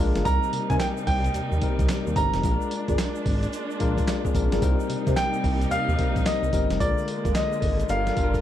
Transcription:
Already playing: A#1 G#3 A#3 D4
0.00 G#3 D4 F4 A#4
0.15 G1 F4 G#4 A#4 D5, snare, closed hi-hat, shaker
0.25 C2 C3 G3 C4 D#4 A#4 A#5, kick, closed hi-hat, tambourine, shaker
0.43 shaker
0.53 C3, closed hi-hat, tambourine
0.70 C3 D#4 G4 A#4 C5 G#5, kick, closed hi-hat, shaker
0.80 G5, snare, clap, closed hi-hat, tambourine, shaker
0.97 shaker
1.07 C2 G5, kick, open hi-hat, tambourine
1.24 closed hi-hat, shaker
1.34 D#2, closed hi-hat, shaker
1.52 D#2, shaker
1.62 G3 C4 D#4 A#4, kick, closed hi-hat, tambourine
1.79 C2, kick, closed hi-hat, shaker
1.89 snare, clap, closed hi-hat, tambourine, shaker
2.07 D#2, shaker
2.16 G1 G3 C4 D#4 A#4 A#5, kick, closed hi-hat, tambourine, shaker
2.34 F1, snare, closed hi-hat, shaker
2.43 A#1 G#3 D4 F4 G#4, kick, closed hi-hat, tambourine, shaker
2.52 A#4
2.61 shaker
2.71 closed hi-hat, tambourine
2.88 G1 F4 G#4 A#4 D5, kick, closed hi-hat, shaker
2.98 snare, clap, closed hi-hat, tambourine, shaker
3.15 shaker
3.26 G#1, kick, open hi-hat, tambourine
3.43 closed hi-hat, shaker
3.53 closed hi-hat, shaker
3.70 shaker
3.80 A#1 G#3 D4 F4 A#4, kick, closed hi-hat, tambourine
3.98 kick, closed hi-hat, shaker
4.08 snare, clap, closed hi-hat, tambourine, shaker
4.25 C4 G#4, kick, shaker
4.35 A#1 D4 A#4, kick, closed hi-hat, tambourine, shaker
4.52 G1 F4 G#4 A#4 D5, snare, closed hi-hat, shaker
4.62 C2 C3 G3 A#3 C4 D#4 A#4, kick, closed hi-hat, tambourine, shaker
4.80 shaker
4.89 C3, closed hi-hat, tambourine
5.07 C3 D#4 G4 A#4 C5, kick, closed hi-hat, shaker
5.16 G5, snare, clap, closed hi-hat, tambourine, shaker
5.34 shaker
5.44 C2, kick, open hi-hat, tambourine
5.61 closed hi-hat, shaker
5.71 D#2 F5, closed hi-hat, shaker
5.88 D#2, shaker
5.98 G3 C4 D#4 A#4, kick, closed hi-hat, tambourine
6.16 A#1, kick, closed hi-hat, shaker
6.26 D#5, snare, clap, closed hi-hat, tambourine, shaker
6.43 C2, shaker
6.53 G1 G3 C4 D#4 A#4, kick, closed hi-hat, tambourine, shaker
6.70 F1, snare, closed hi-hat, shaker
6.80 A#1 D3 G#3 A#3 F4 A#4 D5, kick, closed hi-hat, tambourine, shaker
6.98 shaker
7.08 closed hi-hat, tambourine
7.24 G1 F4 G#4 A#4 D5, kick, closed hi-hat, shaker
7.35 D#5, snare, clap, closed hi-hat, tambourine, shaker
7.52 shaker
7.62 G#1, kick, open hi-hat, tambourine
7.80 closed hi-hat, shaker
7.89 G1 G3 D4 F4 A#4 F5, closed hi-hat, shaker
8.07 snare, shaker
8.16 G1 G3 D4 F4 A4, kick, closed hi-hat, tambourine
8.24 A#4
8.34 kick, closed hi-hat, shaker

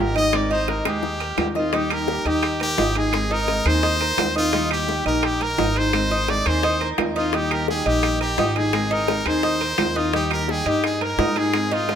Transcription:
Already playing: G#1 G3 A#3 G4
0.00 D#4 G4 A#4
0.14 G3 A#3 D#4 G4 D#5, high timbale
0.32 G#3 C4 D#4 A#4 D5, high bongo, high timbale, claves
0.51 D#4 C5, high bongo
0.68 A#4, high bongo, high timbale, low timbale
0.85 D#2 G#3 G4, high bongo, high timbale, claves
1.03 muted nylon-string guitar stroke, low bongo
1.20 A#4, high timbale
1.37 D#2 G#3 C4 D#4 A#4, low bongo, high timbale, low timbale, claves
1.55 C4 D#4 F4 A#4 D#5, low bongo
1.73 D#3 G3 A#3 D#4 G4, high bongo, high timbale
1.90 G4 A#4, high timbale, claves
2.08 G3 A#3 D#4 G4, high bongo, low timbale
2.25 D#2 G3 A#3 D#4 G4 D#5, high timbale
2.43 high bongo, high timbale, claves
2.60 G4 A#4, muted nylon-string guitar stroke, high timbale
2.78 G#1 G3 A#3 D#4 G4, high bongo, low bongo, low timbale
2.95 G3 A#3 D#4 G4 G#4, high timbale
3.12 G#3 C4 D#4 A#4, high bongo, high timbale, claves
3.31 D#4 A#4, high bongo
3.48 G#3 C4 D#4 A#4, high bongo, high timbale, low timbale
3.65 D#2 C4 D#4 G#4 A#4 C5, high timbale, claves
3.83 D#4, high bongo
4.00 A#4, muted nylon-string guitar stroke, high bongo, high timbale
4.18 D#2 G#3 C4 D#4 A#4, high bongo, low bongo, high timbale, low timbale, claves
4.35 C4 D#4 F4 A#4, high bongo
4.52 D#3 G3 A#3 D#4 G4, high bongo, high timbale
4.71 G4, high timbale, claves
4.88 G3 A#3 D#4 G4, high bongo, low timbale
5.05 A#1 G3 A#3 D#4 G4 A#4 D#5, high timbale
5.23 G4, high bongo, high timbale, claves
5.40 A#4, muted nylon-string guitar stroke, high timbale
5.58 G#1 G3 A#3 D#4 G4, high bongo, low bongo, low timbale
5.75 G3 A#3 D#4 G4 G#4 C5, high timbale
5.93 G#3 C4 D#4 A#4, high bongo, high timbale, claves
6.11 D#4, high bongo
6.28 G#3 C4 D#4 A#4 D5, high bongo, high timbale, low timbale
6.46 D#2 C4 D#4 G#4 A#4 C5, high timbale, claves
6.63 D#4, high bongo
6.81 A#4, muted nylon-string guitar stroke, high bongo, high timbale
6.98 D#2 G#3 C4 D#4 A#4, high bongo, low bongo, high timbale, low timbale, claves
7.16 C4 D#4 F4 A#4, high bongo
7.33 D#3 G3 A#3 D#4 G4, high bongo, high timbale
7.51 G4 A#4, high timbale, claves
7.68 G3 A#3 D#4 G4 G#4, high bongo, low timbale
7.86 A#1 G3 A#3 D#4 G4 D#5, high timbale
8.03 high bongo, high timbale, claves
8.21 G4 A#4, muted nylon-string guitar stroke, high timbale
8.38 G#1 G3 A#3 D#4 G4, high bongo, low bongo, low timbale
8.56 G3 A#3 D#4 G4 G#4, high timbale
8.73 G#3 C4 D#4 A#4, high bongo, high timbale, claves
8.91 D#4 A#4, high bongo
9.08 G#3 C4 D#4 A#4, high bongo, high timbale, low timbale
9.26 D#2 C4 D#4 G#4 A#4 C5, high timbale, claves
9.43 D#4, high bongo
9.61 A#4, muted nylon-string guitar stroke, high bongo, high timbale
9.78 D#2 G#3 C4 D#4 A#4, high bongo, low bongo, high timbale, low timbale, claves
9.95 C4 D#4 F4 A#4, high bongo
10.13 D#3 G3 A#3 D#4 G4, high bongo, high timbale
10.31 G4 A#4, high timbale, claves
10.48 G3 A#3 D#4 G4 G#4, high bongo, low timbale
10.66 G2 G3 A#3 D#4 G4 D#5, high timbale
10.84 G#4, high bongo, high timbale, claves
11.01 A#4, muted nylon-string guitar stroke, high timbale
11.18 G#2 G3 A#3 D#4 G4, high bongo, low bongo, low timbale
11.36 G3 A#3 D#4 G4 G#4, high timbale
11.53 G#3 C4 D#4 A#4, high bongo, high timbale, claves
11.71 D#4 F4, high bongo
11.88 G#3 C4 D#4 A#4, high bongo, high timbale, low timbale

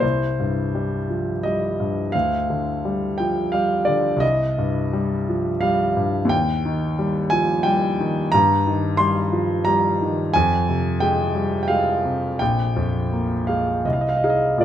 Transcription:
0.00 C2 C5
0.40 G2
0.75 G3
1.10 F3
1.43 G3 D#5
1.80 G2
2.12 D2 F5
2.50 D3
2.85 G3
3.18 F3 G5
3.52 G3 F5
3.85 D3 D5
4.16 C2 D#5
4.58 G2
4.93 G3
5.29 F3
5.61 G3 F5
5.97 G2
6.25 D#2
6.29 G5
6.65 D#3
6.99 G3
7.30 F3 G#5
7.63 G3 G5
8.00 D#3
8.32 G2 A#5
8.67 D#3
8.97 G3 C6
9.32 F3
9.65 G3 A#5
10.02 D#3
10.34 F2 G#5
10.69 C3
11.00 G#3 G5
11.35 G3
11.63 G5
11.68 G#3 F5
12.05 C3
12.39 A#1 G5
12.76 F2
13.13 A#3
13.47 G#3 F5
13.85 C2 D#5
13.93 F5
14.01 D#5
14.09 F5
14.17 D#5
14.24 D#4 G#4 F5
14.30 D#5
14.58 A#1 F3 F4 A#4 D5

